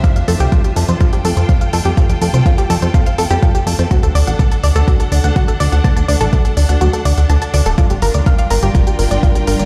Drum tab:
HH |xxoxxxoxxxoxxxox|xxoxxxoxxxoxxxox|xxoxxxoxxxoxxxox|xxoxxxoxxxoxxxox|
BD |o---o---o---o---|o---o---o---o---|o---o---o---o---|o---o-----------|

HH |xxoxxxoxxxoxxxox|
BD |o---o---o---o---|